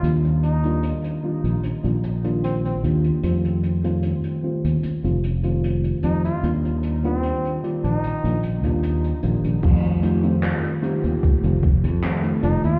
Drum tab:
CC |----------------|----------------|----------------|x---------------|
HH |xxxxxx-xxxxxxxxx|xxxxxx-xxxxxxxxx|xxxxxxxxxxxxxxxx|xxxxxxxxxxxxxxxx|
CP |----------------|----------------|----------------|----x-------x---|
BD |----------------|----------------|----------------|o-------o-o-----|